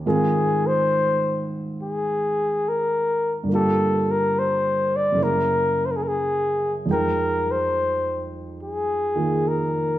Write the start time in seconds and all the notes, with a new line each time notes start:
0.06 G#2 D#3 C4 F4 G#4 A#4
0.67 C5
1.82 G#4
2.69 A#4
3.44 G2 D3
3.49 A#3 F4
3.55 G4 A4
4.11 A#4
4.39 C5
4.96 D5
5.12 F#2 C#3
5.18 A#3 E4
5.23 G#4 A#4
5.86 C5
5.91 A#4
5.96 G#4
6.03 A#4
6.08 G#4
6.86 F2 F3 G#3
6.90 D#4 A#4 G5
7.51 C5
8.63 G#4
9.15 D#3 A#3 F4 G#4
9.48 A#4